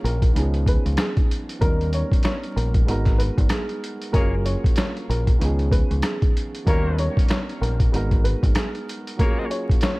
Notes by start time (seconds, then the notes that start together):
Already playing: F#3 A#3 C#4 F4 G#4
0.04 A#1 A#4, closed hi-hat
0.22 kick, closed hi-hat
0.33 C#2 D#3 B3 C#4, closed hi-hat
0.37 F3 D#4 G#4
0.54 closed hi-hat
0.66 B4, kick, closed hi-hat
0.86 C#2, closed hi-hat
0.97 G#4, cross-stick, snare, closed hi-hat
1.17 kick, closed hi-hat
1.31 closed hi-hat
1.49 closed hi-hat
1.59 D#2 F#3 B3 C#4 A#4, kick, closed hi-hat
1.63 G3 D#4 A#4
1.81 closed hi-hat
1.93 C#5, closed hi-hat
2.12 kick, closed hi-hat
2.23 C#5, cross-stick, snare, closed hi-hat
2.44 closed hi-hat
2.56 A#1 A#4, closed hi-hat
2.74 kick, closed hi-hat
2.85 G#1 G#3 B3 D#4, closed hi-hat
2.89 F#4 A#4
3.05 kick, snare, closed hi-hat
3.18 B4, closed hi-hat
3.38 G#1, kick, closed hi-hat
3.49 G#4, cross-stick, snare, closed hi-hat
3.69 closed hi-hat
3.84 closed hi-hat
4.02 closed hi-hat
4.11 F#1 F#3 A#3 C#4 G#4 A#4 C#5, kick, closed hi-hat
4.16 F4 G#4
4.45 C#5, closed hi-hat
4.64 kick, closed hi-hat
4.76 C#5, cross-stick, snare, closed hi-hat
4.97 closed hi-hat
5.09 A#1 A#4, closed hi-hat
5.27 kick, closed hi-hat
5.38 C#2 D#3 B3 C#4, closed hi-hat
5.42 F3 D#4 G#4
5.59 closed hi-hat
5.72 B4, kick, closed hi-hat
5.91 C#2, closed hi-hat
6.02 G#4, cross-stick, snare, closed hi-hat
6.22 kick, closed hi-hat
6.37 closed hi-hat
6.55 closed hi-hat
6.64 D#2 F#3 A#3 B3 C#4 G4 A#4 C#5, kick, closed hi-hat
6.69 G3 D#4 A#4
6.98 C#5, closed hi-hat
7.17 kick, closed hi-hat
7.28 C#5, cross-stick, snare, closed hi-hat
7.49 closed hi-hat
7.61 A#1 A#4, closed hi-hat
7.80 kick, closed hi-hat
7.90 G#1 G#3 B3 D#4, closed hi-hat
7.95 F#4 A#4
8.11 kick, closed hi-hat
8.24 B4, closed hi-hat
8.43 G#1, kick, closed hi-hat
8.55 G#4, cross-stick, snare, closed hi-hat
8.75 closed hi-hat
8.89 closed hi-hat
9.07 closed hi-hat
9.17 F#3 A#3 C#4 G#4 A#4 C#5, kick, closed hi-hat
9.21 F4 G#4
9.50 C#5, closed hi-hat
9.70 kick, closed hi-hat
9.81 C#5, cross-stick, snare, closed hi-hat